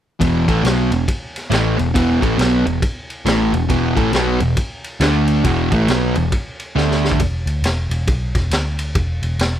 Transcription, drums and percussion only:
0.21 kick medium
0.21 ride medium
0.48 kick medium
0.48 ride medium
0.65 snare loud
0.65 ride medium
0.92 ride medium
1.08 kick medium
1.08 ride medium
1.36 snare soft
1.36 ride medium
1.52 snare medium
1.52 ride medium
1.79 ride medium
1.95 kick medium
1.95 ride medium
2.22 kick loud
2.22 ride medium
2.39 snare loud
2.39 ride medium
2.67 ride medium
2.82 kick loud
2.82 ride medium
3.10 ride medium
3.26 snare loud
3.26 ride medium
3.54 ride medium
3.70 kick medium
3.70 ride medium
3.97 kick loud
3.97 ride medium
4.13 snare loud
4.13 ride medium
4.40 ride medium
4.57 kick medium
4.57 ride medium
4.84 ride medium
5.01 snare medium
5.01 ride medium
5.28 ride medium
5.44 kick loud
5.44 ride medium
5.72 kick loud
5.72 ride medium
5.88 snare loud
5.88 ride medium
6.15 ride medium
6.32 kick medium
6.32 ride medium
6.60 ride medium
6.78 snare medium
6.91 snare medium
7.05 snare medium
7.12 kick medium
7.20 kick loud
7.20 ride medium
7.47 ride medium
7.64 snare loud
7.64 ride medium
7.91 ride medium
8.07 kick loud
8.07 ride medium
8.35 kick medium
8.35 snare soft
8.35 ride medium
8.51 snare loud
8.51 ride medium
8.79 ride medium
8.95 kick loud
8.95 ride medium
9.23 ride medium
9.39 snare loud
9.39 ride medium

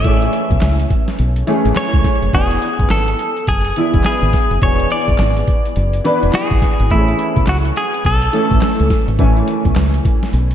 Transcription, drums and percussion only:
0.04 kick loud
0.04 closed hi-hat medium
0.22 closed hi-hat soft
0.33 closed hi-hat medium
0.51 kick medium
0.51 closed hi-hat soft
0.61 snare loud
0.61 clap medium
0.61 closed hi-hat medium
0.80 closed hi-hat medium
0.90 kick medium
0.90 closed hi-hat medium
1.08 snare medium
1.08 closed hi-hat soft
1.19 closed hi-hat medium
1.36 closed hi-hat medium
1.47 closed hi-hat medium
1.65 closed hi-hat soft
1.75 snare loud
1.75 clap medium
1.75 closed hi-hat medium
1.93 kick medium
1.93 closed hi-hat soft
2.04 kick medium
2.04 snare medium
2.04 closed hi-hat medium
2.22 closed hi-hat soft
2.33 kick loud
2.33 closed hi-hat medium
2.51 closed hi-hat soft
2.62 closed hi-hat medium
2.79 kick medium
2.79 closed hi-hat soft
2.89 snare loud
2.89 clap medium
2.89 closed hi-hat medium
3.08 closed hi-hat medium
3.19 closed hi-hat medium
3.37 closed hi-hat soft
3.47 kick medium
3.47 closed hi-hat medium
3.65 closed hi-hat medium
3.76 closed hi-hat medium
3.94 kick medium
3.94 closed hi-hat soft
4.04 snare loud
4.04 clap medium
4.04 closed hi-hat medium
4.22 closed hi-hat soft
4.33 kick loud
4.33 snare medium
4.33 closed hi-hat medium
4.51 closed hi-hat soft
4.62 kick loud
4.62 closed hi-hat medium
4.80 closed hi-hat soft
4.90 closed hi-hat medium
5.08 kick medium
5.08 closed hi-hat medium
5.18 snare loud
5.18 clap medium
5.18 closed hi-hat medium
5.37 closed hi-hat medium
5.48 kick medium
5.48 closed hi-hat medium
5.65 closed hi-hat medium
5.76 closed hi-hat medium
5.93 closed hi-hat medium
6.05 closed hi-hat medium
6.23 closed hi-hat soft
6.33 snare loud
6.33 clap medium
6.33 closed hi-hat medium
6.51 kick medium
6.51 closed hi-hat soft
6.62 kick loud
6.62 snare medium
6.62 closed hi-hat medium
6.80 closed hi-hat soft
6.90 kick loud
6.90 closed hi-hat medium
7.08 closed hi-hat soft
7.19 closed hi-hat medium
7.36 kick medium
7.36 closed hi-hat soft
7.46 snare loud
7.46 clap medium
7.46 closed hi-hat medium
7.65 closed hi-hat medium
7.76 closed hi-hat medium
7.94 closed hi-hat soft
8.05 kick medium
8.05 closed hi-hat medium
8.22 closed hi-hat medium
8.33 closed hi-hat medium
8.51 kick medium
8.51 closed hi-hat soft
8.61 snare loud
8.61 clap medium
8.61 closed hi-hat medium
8.80 closed hi-hat soft
8.90 kick medium
8.90 snare medium
8.90 closed hi-hat medium
9.08 closed hi-hat soft
9.19 kick loud
9.19 closed hi-hat medium
9.37 closed hi-hat soft
9.48 closed hi-hat medium
9.65 kick medium
9.65 closed hi-hat soft
9.75 snare loud
9.75 clap medium
9.75 closed hi-hat medium
9.94 closed hi-hat medium
10.05 kick loud
10.05 closed hi-hat medium
10.23 snare medium
10.23 closed hi-hat soft
10.33 closed hi-hat medium
10.51 closed hi-hat medium

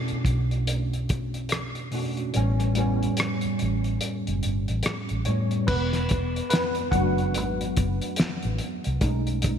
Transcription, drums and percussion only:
0.08 closed hi-hat soft
0.25 kick medium
0.25 closed hi-hat medium
0.51 closed hi-hat soft
0.67 closed hi-hat medium
0.93 closed hi-hat soft
1.09 kick medium
1.09 closed hi-hat medium
1.34 closed hi-hat soft
1.49 cross-stick medium
1.49 closed hi-hat medium
1.75 closed hi-hat soft
1.92 open hi-hat medium
2.17 closed hi-hat soft
2.34 closed hi-hat medium
2.60 cross-stick soft
2.60 closed hi-hat soft
2.75 closed hi-hat medium
3.03 closed hi-hat soft
3.17 cross-stick loud
3.17 closed hi-hat medium
3.41 closed hi-hat soft
3.59 closed hi-hat medium
3.84 closed hi-hat soft
4.01 closed hi-hat medium
4.27 closed hi-hat soft
4.43 closed hi-hat medium
4.68 closed hi-hat soft
4.83 cross-stick loud
4.83 closed hi-hat medium
5.09 closed hi-hat soft
5.25 closed hi-hat medium
5.51 closed hi-hat soft
5.68 kick loud
5.68 crash medium
5.93 snare soft
5.93 closed hi-hat soft
6.09 kick loud
6.09 closed hi-hat medium
6.36 closed hi-hat soft
6.50 snare loud
6.50 closed hi-hat medium
6.75 closed hi-hat soft
6.92 kick loud
6.92 closed hi-hat medium
7.18 closed hi-hat soft
7.34 closed hi-hat medium
7.61 closed hi-hat soft
7.77 kick loud
7.77 closed hi-hat medium
8.02 closed hi-hat soft
8.16 snare loud
8.16 closed hi-hat medium
8.43 closed hi-hat soft
8.58 closed hi-hat medium
8.84 closed hi-hat soft
9.01 kick loud
9.01 closed hi-hat medium
9.27 closed hi-hat soft
9.42 kick medium
9.42 closed hi-hat medium

